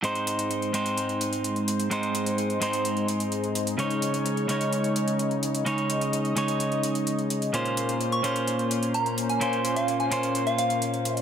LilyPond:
<<
  \new Staff \with { instrumentName = "Synth bell" } { \time 4/4 \key aes \mixolydian \tempo 4 = 128 r1 | r1 | r1 | r1 |
r4 r16 des'''8 r4 r16 bes''8 r16 aes''16~ | aes''16 r8 f''8 aes''16 aes''16 r8 f''16 f''4. | }
  \new Staff \with { instrumentName = "Analog synth pad" } { \time 4/4 \key aes \mixolydian << { c''1~ | c''1 | des''1 | ees''1 |
c''1~ | c''1 | } \\ { <aes ees'>1~ | <aes ees'>1~ | <aes ees'>1~ | <aes ees'>1 |
<bes des'>1~ | <bes des'>1 | } >> }
  \new Staff \with { instrumentName = "Clean electric guitar" } { \time 4/4 \key aes \mixolydian <aes, aes c' ees' c''>4. <aes, aes c' ees' c''>2~ <aes, aes c' ees' c''>8 | <aes, aes c' ees' c''>4. <aes, aes c' ees' c''>2~ <aes, aes c' ees' c''>8 | <des aes des' ees' des''>4. <des aes des' ees' des''>2~ <des aes des' ees' des''>8 | <des aes des' ees' des''>4. <des aes des' ees' des''>2~ <des aes des' ees' des''>8 |
<bes, bes des' f' c''>4. <bes, bes des' f' c''>2~ <bes, bes des' f' c''>8 | <bes, bes des' f' c''>4. <bes, bes des' f' c''>2~ <bes, bes des' f' c''>8 | }
  \new DrumStaff \with { instrumentName = "Drums" } \drummode { \time 4/4 hh16 hh16 hh16 hh16 hh16 hh16 hh16 hh16 hh16 hh16 hh16 hh16 hh16 hh16 hh16 hh16 | hh16 hh16 hh16 hh16 hh16 hh16 hh16 hh16 hh16 hh16 hh16 hh16 hh16 hh16 hh16 hh16 | hh16 hh16 hh16 hh16 hh16 hh16 hh16 hh16 hh16 hh16 hh16 hh16 hh16 hh16 hh16 hh16 | hh16 hh16 hh16 hh16 hh16 hh16 hh16 hh16 hh16 hh16 hh16 hh16 hh16 hh16 hh16 hh16 |
hh16 hh16 hh16 hh16 hh16 hh16 hh16 hh16 hh16 hh16 hh16 hh16 hh16 hh16 hh16 hh16 | hh16 hh16 hh16 hh16 hh16 hh16 hh16 hh16 hh16 hh16 hh16 hh16 hh16 hh16 hh16 hh16 | }
>>